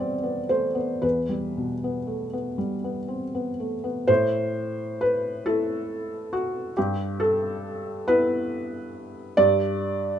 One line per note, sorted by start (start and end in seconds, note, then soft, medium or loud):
0.00 0.99 E2 medium
0.00 1.06 G3 soft
0.00 0.50 A3 soft
0.00 0.23 B3 soft
0.00 0.40 C4 soft
0.00 0.49 C5 medium
0.00 0.49 D5 medium
0.00 1.06 E5 medium
0.23 0.65 B3 soft
0.49 0.76 A3 soft
0.49 1.03 C5 medium
0.75 1.18 B3 soft
1.02 4.04 E2 soft
1.02 2.58 B4 medium
1.29 1.72 G3 soft
1.57 1.98 B2 soft
1.84 2.24 B3 soft
2.07 2.33 A3 soft
2.33 2.73 B3 soft
2.58 2.98 G3 soft
2.84 3.24 B3 soft
3.08 3.49 C4 soft
3.35 3.75 B3 soft
3.60 3.85 A3 soft
3.84 4.08 B3 soft
4.07 6.72 A2 medium
4.07 5.00 C5 medium
5.01 5.46 B4 medium
5.46 6.73 A3 soft
5.46 6.73 E4 medium
5.46 6.33 A4 medium
6.33 6.76 F#4 medium
6.77 9.34 G2 medium
6.77 7.20 G4 medium
7.20 8.06 A4 medium
8.08 9.34 B3 soft
8.08 9.34 E4 medium
8.08 9.38 B4 medium
9.37 10.19 G2 medium
9.37 10.19 D5 loud